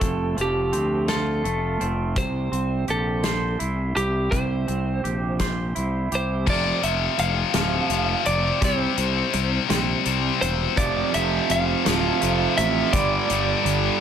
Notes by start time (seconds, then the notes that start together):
Already playing: A3 C4 F4 A4
0.01 F1 F2, kick, closed hi-hat
0.37 F1 F3, closed hi-hat
0.41 G4
0.72 D2 C4, closed hi-hat
1.08 F4 A4, snare, closed hi-hat
1.44 F1 A3, closed hi-hat
1.80 F1 C4, closed hi-hat
2.16 C2 C3 C5, kick, closed hi-hat
2.52 C2 C4, closed hi-hat
2.88 A#1 G4 A4, closed hi-hat
3.23 C5, snare, closed hi-hat
3.59 C2 E4, closed hi-hat
3.95 C2 G4, closed hi-hat
4.31 C2 C3 C5, kick, closed hi-hat
4.68 C2 C4, closed hi-hat
5.04 A#1 G4, closed hi-hat
5.39 C5, kick, snare, closed hi-hat
5.75 C2 E4, closed hi-hat
6.12 C2 G4 C5, closed hi-hat
6.46 F1 F2 C3 F3 D5, kick, crash
6.82 F1 F2 C3 F3 E5, closed hi-hat
7.18 F1 F2 C3 F5, closed hi-hat
7.54 D1 F2 C3 F3, snare, closed hi-hat
7.89 F1 F2 C3 F3, closed hi-hat
8.26 F1 F2 C3 F3 D5, closed hi-hat
8.61 C2 C3 G3 C4 C5, kick, closed hi-hat
8.98 C2 C3 G3 C4, closed hi-hat
9.33 C2 C3 G3, closed hi-hat
9.69 A#1 C3 G3 C4, snare, closed hi-hat
10.04 C2 C3 G3 C4, closed hi-hat
10.41 E1 C3 G3 C4 C5, closed hi-hat
10.76 F1 F2 C3 F3 D5, kick, closed hi-hat
11.13 F1 F2 C3 F3 E5, closed hi-hat
11.50 F1 F2 C3 F5, closed hi-hat
11.85 D1 F2 C3 F3, snare, closed hi-hat
12.20 F1 F2 C3 F3, closed hi-hat
12.57 A1 F2 C3 F3 E5, closed hi-hat
12.93 G1 G2 D3 G3 D5, kick, closed hi-hat
13.29 G1 G2 D3 G3, closed hi-hat
13.64 G1 G2 D3, closed hi-hat